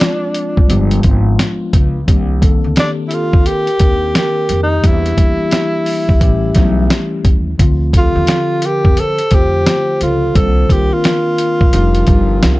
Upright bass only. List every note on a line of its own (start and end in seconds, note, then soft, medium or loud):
0.58 0.69 C2 medium
0.70 1.01 G1 loud
1.04 1.35 G#1 medium
1.73 2.04 C#2 loud
2.08 2.58 C2 loud
2.64 2.76 D2 medium
3.33 3.45 D#2 medium
3.80 4.11 D#2 medium
4.50 4.80 F2 medium
4.84 5.15 E2 loud
5.18 5.37 E2 medium
6.09 6.21 D2 medium
6.21 6.52 A1 medium
6.56 6.87 B1 loud
7.25 7.56 D#2 medium
7.59 8.10 D2 loud
8.15 8.27 D#2 loud
8.85 8.96 F2 medium
9.32 9.63 F2 medium
10.01 10.32 C#2 medium
10.36 10.67 C2 loud
10.70 10.89 C2 medium
11.61 11.72 A#1 medium
11.74 12.04 F1 loud
12.08 12.39 G1 medium
12.43 12.60 C2 medium